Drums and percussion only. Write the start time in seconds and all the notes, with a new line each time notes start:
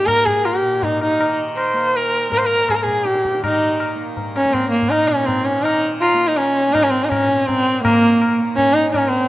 0.08 tabla na, tabla ge
0.27 tabla ge
0.45 tabla na
0.83 tabla tin, tabla ge
1.01 tabla na
1.21 tabla na
1.57 tabla na
1.76 tabla na
1.95 tabla tin
2.14 tabla na
2.32 tabla na, tabla ge
2.69 tabla na, tabla ge
2.88 tabla ge
3.05 tabla te
3.15 tabla te
3.25 tabla ke
3.35 tabla te
3.44 tabla na, tabla ge
3.80 tabla na
4.17 tabla tin, tabla ge
4.36 tabla na
4.45 tabla ke
4.54 tabla na, tabla ge
4.73 tabla te
4.82 tabla ge
4.92 tabla na
5.28 tabla tin, tabla ge
5.65 tabla na
6.02 tabla na
6.37 tabla tin
6.75 tabla na, tabla ge
7.12 tabla na, tabla ge
7.29 tabla te
7.48 tabla tin, tabla ge
7.85 tabla na, tabla ge
8.22 tabla na
8.58 tabla tin, tabla ge
8.94 tabla na, tabla ge